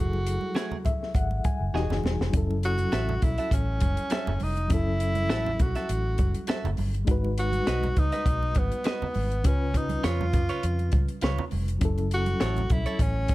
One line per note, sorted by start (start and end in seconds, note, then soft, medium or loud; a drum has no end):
0.00 0.37 F#1 loud
0.00 1.69 F#3 medium
0.00 1.70 E4 medium
0.00 0.87 F#4 medium
0.00 1.71 G#4 medium
0.00 1.72 A4 medium
0.13 muted conga soft
0.27 closed hi-hat medium
0.41 high conga medium
0.55 0.76 A3 medium
0.55 0.76 E4 medium
0.55 0.77 G#4 medium
0.55 snare loud
0.55 closed hi-hat medium
0.55 muted conga soft
0.71 high conga medium
0.71 low conga medium
0.85 1.13 E5 medium
0.85 kick medium
0.85 closed hi-hat medium
0.85 high conga medium
0.85 low conga medium
1.03 snare soft
1.14 1.41 G#1 medium
1.14 1.42 F#5 medium
1.14 kick medium
1.14 closed hi-hat medium
1.14 muted conga soft
1.31 muted conga soft
1.44 1.72 G#5 medium
1.44 muted fingered electric bass stroke soft
1.44 kick medium
1.44 closed hi-hat medium
1.44 high conga medium
1.61 1.72 F#1 medium
1.73 1.88 E1 loud
1.73 2.33 E3 medium
1.73 2.34 D#4 medium
1.73 1.95 F#4 medium
1.73 2.34 F#4 medium
1.73 1.82 G4 medium
1.73 1.95 G#4 medium
1.73 1.96 D#5 medium
1.73 2.30 G#5 medium
1.73 snare soft
1.73 muted conga soft
1.83 2.38 G#4 medium
1.90 2.02 F#1 medium
1.90 snare medium
1.90 muted conga soft
1.90 low conga medium
2.04 2.18 E1 medium
2.04 snare medium
2.04 high conga medium
2.20 2.32 F1 medium
2.20 snare medium
2.31 2.86 F#1 loud
2.31 4.65 F#3 medium
2.31 4.66 C#4 medium
2.31 kick loud
2.31 closed hi-hat loud
2.35 4.67 E4 medium
2.35 4.69 A4 medium
2.51 muted conga soft
2.63 3.25 F#4 loud
2.63 closed hi-hat medium
2.78 closed hi-hat soft
2.78 high conga medium
2.92 3.19 A1 medium
2.92 3.13 F#4 medium
2.92 3.14 A4 medium
2.92 3.14 E5 medium
2.92 snare loud
2.92 closed hi-hat medium
2.92 muted conga soft
3.09 muted conga soft
3.09 high conga medium
3.09 low conga medium
3.22 3.36 B1 medium
3.22 3.53 E4 loud
3.22 kick medium
3.22 closed hi-hat medium
3.22 high conga medium
3.22 low conga medium
3.38 3.54 F#4 soft
3.38 3.53 A4 soft
3.38 3.53 E5 soft
3.38 closed hi-hat soft
3.51 3.78 A1 medium
3.51 4.45 C#4 medium
3.51 kick medium
3.51 closed hi-hat medium
3.51 muted conga soft
3.81 3.96 F#1 medium
3.81 kick medium
3.81 closed hi-hat medium
3.81 high conga medium
3.97 closed hi-hat medium
4.10 4.32 F#4 medium
4.10 4.32 A4 medium
4.10 4.33 E5 medium
4.10 snare loud
4.10 closed hi-hat medium
4.10 muted conga soft
4.10 high conga soft
4.27 4.39 F#1 medium
4.27 muted conga soft
4.27 low conga medium
4.40 4.67 F1 medium
4.40 4.74 D#4 medium
4.40 open hi-hat medium
4.40 high conga medium
4.57 closed hi-hat medium
4.68 5.30 F#1 medium
4.68 7.02 F#3 medium
4.68 7.03 C#4 medium
4.68 kick loud
4.68 closed hi-hat loud
4.68 muted conga soft
4.72 7.04 E4 medium
4.72 5.64 E4 loud
4.72 7.05 A4 medium
5.00 closed hi-hat medium
5.15 closed hi-hat soft
5.15 high conga medium
5.29 5.56 A1 medium
5.29 5.51 F#4 medium
5.29 5.51 A4 medium
5.29 5.51 E5 medium
5.29 snare loud
5.29 closed hi-hat medium
5.46 high conga medium
5.46 low conga medium
5.59 5.74 B1 loud
5.59 6.50 F#4 medium
5.59 kick medium
5.59 closed hi-hat medium
5.59 high conga medium
5.59 low conga medium
5.75 5.91 F#4 soft
5.75 5.90 A4 soft
5.75 5.90 E5 soft
5.75 snare soft
5.75 closed hi-hat soft
5.89 6.15 A1 loud
5.89 closed hi-hat medium
5.89 muted conga soft
6.18 6.33 F#1 medium
6.18 kick medium
6.18 closed hi-hat medium
6.18 high conga medium
6.34 closed hi-hat medium
6.47 6.69 F#4 medium
6.47 6.69 A4 medium
6.47 6.70 E5 medium
6.47 snare loud
6.47 closed hi-hat medium
6.47 muted conga soft
6.47 high conga soft
6.64 6.76 F#1 medium
6.64 closed hi-hat soft
6.64 low conga medium
6.77 7.04 G1 medium
6.77 open hi-hat medium
6.77 high conga medium
6.95 closed hi-hat medium
7.05 7.60 G#1 loud
7.05 9.39 G#3 medium
7.05 9.40 D#4 medium
7.05 9.41 F#4 medium
7.05 kick loud
7.05 closed hi-hat medium
7.11 9.42 B4 medium
7.24 muted conga soft
7.38 8.00 F#4 loud
7.38 closed hi-hat medium
7.52 closed hi-hat soft
7.52 high conga medium
7.67 7.93 B1 medium
7.67 7.88 F#4 medium
7.67 7.88 B4 medium
7.67 7.88 D#5 medium
7.67 snare medium
7.67 closed hi-hat medium
7.83 closed hi-hat soft
7.83 muted conga soft
7.83 high conga medium
7.83 low conga medium
7.97 8.11 C#2 medium
7.97 8.60 D#4 loud
7.97 kick medium
7.97 closed hi-hat medium
7.97 high conga medium
7.97 low conga medium
8.12 8.28 F#4 soft
8.12 8.28 B4 soft
8.12 8.27 D#5 medium
8.12 snare soft
8.12 closed hi-hat soft
8.26 8.52 B1 loud
8.26 kick loud
8.26 closed hi-hat medium
8.26 muted conga soft
8.43 muted conga soft
8.55 8.70 G#1 medium
8.55 9.48 B3 medium
8.55 kick medium
8.55 closed hi-hat medium
8.55 high conga medium
8.72 closed hi-hat medium
8.84 9.06 F#4 medium
8.84 9.07 B4 medium
8.84 9.07 D#5 medium
8.84 snare loud
8.84 closed hi-hat medium
8.84 muted conga soft
8.84 high conga soft
9.02 muted fingered electric bass stroke soft
9.02 muted conga soft
9.02 low conga medium
9.14 9.41 G#1 medium
9.14 open hi-hat medium
9.14 high conga medium
9.32 closed hi-hat soft
9.42 9.97 C#2 loud
9.42 11.76 C#3 medium
9.42 11.78 C#4 medium
9.42 kick loud
9.42 closed hi-hat loud
9.42 muted conga soft
9.46 9.78 C#4 medium
9.46 11.79 F4 medium
9.46 11.79 B4 medium
9.74 10.07 D#4 medium
9.74 kick medium
9.74 closed hi-hat medium
9.89 closed hi-hat soft
9.89 high conga medium
10.03 10.34 F2 medium
10.03 10.24 F4 medium
10.03 11.23 F4 medium
10.03 10.25 B4 medium
10.03 10.25 C#5 medium
10.03 snare medium
10.03 closed hi-hat medium
10.03 muted conga soft
10.21 muted conga soft
10.21 high conga medium
10.21 low conga medium
10.33 10.48 F#2 medium
10.33 kick medium
10.33 closed hi-hat medium
10.33 high conga medium
10.33 low conga medium
10.49 10.65 F4 soft
10.49 10.64 B4 soft
10.49 10.64 C#5 soft
10.49 closed hi-hat soft
10.63 10.89 F2 loud
10.63 closed hi-hat medium
10.79 closed hi-hat soft
10.79 muted conga soft
10.92 11.07 C#2 medium
10.92 kick loud
10.92 closed hi-hat medium
10.92 high conga medium
11.09 closed hi-hat medium
11.21 11.37 C#2 medium
11.21 11.43 F4 medium
11.21 11.44 B4 medium
11.21 11.44 C#5 medium
11.21 snare loud
11.21 closed hi-hat medium
11.21 muted conga soft
11.21 high conga soft
11.38 muted conga soft
11.38 low conga medium
11.51 11.78 F1 loud
11.51 open hi-hat medium
11.51 high conga medium
11.68 closed hi-hat medium
11.79 12.33 F#1 loud
11.79 13.35 F#3 medium
11.79 13.35 C#4 medium
11.79 13.35 E4 medium
11.79 kick loud
11.79 closed hi-hat loud
11.79 muted conga soft
11.85 13.35 A4 medium
11.98 closed hi-hat soft
11.98 muted conga soft
12.11 12.74 F#4 loud
12.11 closed hi-hat medium
12.26 closed hi-hat soft
12.26 high conga medium
12.40 12.67 A1 medium
12.40 12.61 E4 medium
12.40 12.62 A4 medium
12.40 12.62 C#5 medium
12.40 snare loud
12.40 closed hi-hat medium
12.40 muted conga soft
12.56 closed hi-hat soft
12.56 muted conga soft
12.56 high conga medium
12.56 low conga medium
12.70 12.84 B1 medium
12.70 13.03 E4 loud
12.70 kick loud
12.70 closed hi-hat medium
12.70 high conga medium
12.70 low conga medium
12.86 13.02 E4 soft
12.86 13.01 A4 medium
12.86 13.01 C#5 medium
12.86 closed hi-hat soft
12.99 13.26 A1 medium
12.99 13.35 C#4 loud
12.99 kick medium
12.99 closed hi-hat medium
13.28 13.35 F#1 medium
13.28 kick medium
13.28 closed hi-hat medium
13.28 high conga medium